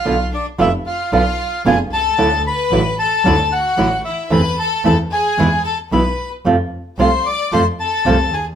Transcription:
<<
  \new Staff \with { instrumentName = "Bandoneon" } { \time 4/4 \key d \dorian \tempo 4 = 112 f''8 d''8 e''8 f''8 f''4 gis''8 a''8~ | a''8 b''4 a''4 fis''4 e''8 | b''8 a''8 a''8 gis''4 a''8 b''8. r16 | r4 c'''8 d'''8 c'''8 a''4 gis''8 | }
  \new Staff \with { instrumentName = "Violin section" } { \time 4/4 \key d \dorian f'8 d'8 e'8 f'8 f'4 gis'8 a'8~ | a'8 b'4 a'4 fis'4 e'8 | b'8 a'8 a'8 gis'4 a'8 b'8. r16 | r4 c''8 d''8 c''8 a'4 gis'8 | }
  \new Staff \with { instrumentName = "Nylon-string guitar" } { \time 4/4 \key d \dorian <b, d b d' f'>8 r8 <b, d b d' f'>8 r8 <b, d b d' f'>8 r8 <b, d b d' f'>8 r8 | <d fis a e' fis'>8 r8 <d fis a e' fis'>8 r8 <d fis a e' fis'>8 r8 <d fis a e' fis'>8 r8 | <e a c' e'>8 r8 <e a c' e'>8 r8 <b, e gis b e'>8 r8 <b, e gis b e'>8 r8 | <c f a c' f'>8 r8 <c f a c' f'>8 r8 <c f a c' f'>8 r8 <c f a c' f'>8 r8 | }
  \new Staff \with { instrumentName = "Double bass" } { \clef bass \time 4/4 \key d \dorian b,,8 r8 f,,8 r8 b,,8 r8 f,,8 c,8 | d,8 r8 a,,8 r8 d,8 r8 a,,8 r8 | e,8 r8 e,8 r8 e,8 r8 b,,8 r8 | f,8 r8 c,8 r8 f,8 r8 c,8 dis,8 | }
>>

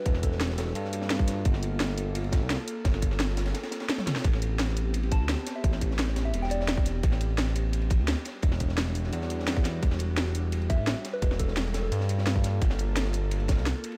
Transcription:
<<
  \new Staff \with { instrumentName = "Synth bell" } { \time 4/4 \key g \major \tempo 4 = 172 b'16 r16 a'8 r8 a'16 a'16 r2 | r1 | r1 | r2 r8 a''8 r8. e''16~ |
e''16 r4. e''8 g''16 d''4. | r1 | r1 | r2 r8 e''8 r8. b'16~ |
b'16 r16 a'8 r8 a'16 a'16 r2 | r1 | }
  \new Staff \with { instrumentName = "Analog synth pad" } { \time 4/4 \key g \major <g d' fis'>2 <bes f' a'>2~ | <bes f' a'>1~ | <bes f' a'>1 | <b c' g'>1~ |
<b c' g'>1~ | <b c' g'>2.~ <b c' g'>8 <g d' fis'>8~ | <g d' fis'>1~ | <g d' fis'>1~ |
<g d' fis'>2 <bes f' a'>2~ | <bes f' a'>1 | }
  \new Staff \with { instrumentName = "Analog synth bass" } { \clef bass \time 4/4 \key g \major e,,2 g,2 | g,,2~ g,,8. c,8 r8. | g,,2 r2 | a,,2~ a,,8. d,8 r8. |
a,,2 e,,2 | a,,2~ a,,8. d,8 r8. | e,,2 e,2 | e,,2~ e,,8. a,,8 r8. |
e,,2 g,2 | g,,2~ g,,8. c,8 r8. | }
  \new DrumStaff \with { instrumentName = "Drums" } \drummode { \time 4/4 <hh bd cymr>16 sn16 <hh bd cymr>16 sn16 <hh cymr sn>16 sn16 <hho cymr sn>16 sn16 <hh cymr>16 sn16 <hh cymr>16 sn16 <hh cymr sn>16 bd16 <hh cymr sn>8 | <hh bd cymr>16 sn16 <hh cymr>8 <hh cymr sn>16 sn16 <hh cymr>8 <hh cymr>16 cymr16 <hh bd cymr sn>8 <hh cymr sn>8 <hh cymr>8 | <hh bd cymr sn>16 sn16 <hh bd cymr>16 sn16 <hh cymr sn>16 sn16 <hho cymr sn>16 <cymr sn>16 <hh cymr sn>16 <cymr sn>16 <hh cymr sn>16 <cymr sn>16 <hh cymr sn>16 <cymr sn tommh>16 <hh cymr sn toml>16 <cymr sn>32 <cymr sn>32 | <hh bd cymr>16 sn16 <hh cymr>8 <hh cymr sn>16 sn16 <hh cymr>8 <hh cymr>16 cymr16 <hh bd cymr>8 <hh cymr sn>8 <hh cymr sn>8 |
<hh bd cymr>16 sn16 <hh bd cymr>16 sn16 <hh cymr sn>16 sn16 <hho cymr sn>16 sn16 <hh cymr>16 sn16 <hh cymr>16 sn16 <hh cymr sn>16 bd16 <hh cymr sn>8 | <hh bd cymr>16 sn16 <hh cymr>8 <hh cymr sn>16 sn16 <hh cymr>8 <hh cymr>16 cymr16 <hh bd cymr>8 <hh cymr sn>8 <hh cymr sn>8 | <hh bd cymr>16 sn16 <hh bd cymr>16 sn16 <hh cymr sn>16 sn16 <hho cymr>16 sn16 <hh cymr>16 sn16 <hh cymr>16 sn16 <hh cymr sn>16 bd16 <hh cymr sn>8 | <hh bd cymr>16 sn16 <hh cymr>8 <hh cymr sn>16 sn16 <hh cymr>8 <hh cymr>16 cymr16 <hh bd cymr>8 <hh cymr sn>8 <hh cymr sn>8 |
<hh bd cymr>16 sn16 <hh bd cymr>16 sn16 <hh cymr sn>16 sn16 <hho cymr sn>16 sn16 <hh cymr>16 sn16 <hh cymr>16 sn16 <hh cymr sn>16 bd16 <hh cymr sn>8 | <hh bd cymr>16 sn16 <hh cymr>8 <hh cymr sn>16 sn16 <hh cymr>8 <hh cymr>16 cymr16 <hh bd cymr sn>16 sn16 <hh cymr sn>8 <hh cymr>16 cymr16 | }
>>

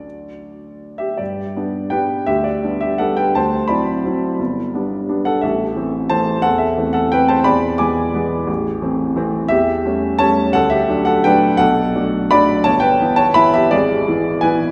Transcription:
<<
  \new Staff \with { instrumentName = "Grand piano" } { \time 3/4 \key d \major \tempo 4 = 172 d''2~ d''8 <g' e''>8 | \key g \major <g' d''>2 <b' g''>4 | <g' e''>8 <g' d''>4 <g' e''>8 <a' fis''>8 <b' g''>8 | <c'' a''>4 <d'' b''>2~ |
<d'' b''>2 r8 <a' fis''>8 | <a' e''>2 <c'' a''>4 | <a' fis''>8 <a' e''>4 <a' fis''>8 <b' g''>8 <c'' a''>8 | <d'' b''>4 <gis'' d'''>2~ |
<gis'' d'''>2 r4 | \key e \dorian <g' e''>2 <cis'' a''>4 | <a' fis''>8 <g' e''>4 <a' fis''>8 <b' g''>4 | <a' fis''>2 <d'' b''>4 |
<cis'' a''>8 <b' g''>4 <cis'' a''>8 <e'' b''>8 <g' e''>8 | <gis' d''>2 <b' gis''>4 | }
  \new Staff \with { instrumentName = "Grand piano" } { \time 3/4 \key d \major <d, fis a d'>2. | \key g \major g,4 <g b d'>4 <g b d'>4 | d,4 <g b d'>4 <g b d'>4 | d,4 <fis c' e'>4 <fis c' e'>4 |
g,,4 <g b d'>4 <g b d'>4 | a,,4 <e a c'>4 <e a c'>4 | e,4 <e a c'>4 <e a c'>4 | e,4 <e gis b>4 <e gis b>4 |
a,,4 <e a c'>4 <e a c'>4 | \key e \dorian e,4 <g a cis'>4 <g a cis'>4 | d,4 <fis a d'>4 <fis a d'>4 | b,,4 <fis a d'>4 <fis a d'>4 |
g,,4 <e b e'>4 <e b e'>4 | gis,,4 <e b e'>4 <e b e'>4 | }
>>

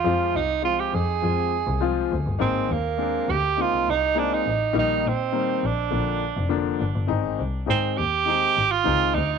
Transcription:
<<
  \new Staff \with { instrumentName = "Tenor saxophone" } { \time 4/4 \key aes \lydian \tempo 4 = 102 f'8 ees'8 f'16 g'16 aes'2 r8 | c'8 bes4 g'8 f'8 ees'8 d'16 ees'8. | ees'8 c'4 d'2 r8 | r4 c'8 g'4~ g'16 f'8. ees'8 | }
  \new Staff \with { instrumentName = "Grand piano" } { \time 4/4 \key aes \lydian <f aes c' f'>8 r8 <f aes c' f'>8 r8 <f aes c' aes'>8 r8 <f aes c' f'>8 r8 | <aes bes c' ees'>8 r8 <aes bes c' d'>8 r8 <aes bes c' ees'>8 r8 <aes bes c' ees'>8 r8 | <ees g bes ees'>8 r8 <ees g bes c'>8 r8 <d f bes d'>8 r8 <d f bes d'>8 r8 | <ees aes c' ees'>8 r8 <ees aes c' ees'>8 r8 <ees aes c' ees'>8 r8 <ees aes c' ees'>8 r8 | }
  \new Staff \with { instrumentName = "Double bass" } { \clef bass \time 4/4 \key aes \lydian f,8 c,4 f,8 f,8. c,8 r16 d,16 g,,16 | aes,,8 ees,4 d,8 r16 c,16 c,4 a,,8 | bes,,8 bes,4 bes,,8 bes,,8. f,,8 r16 g,,16 g,,16 | aes,,8 c,8 aes,8 ees,4 aes,,8 des,8 d,8 | }
>>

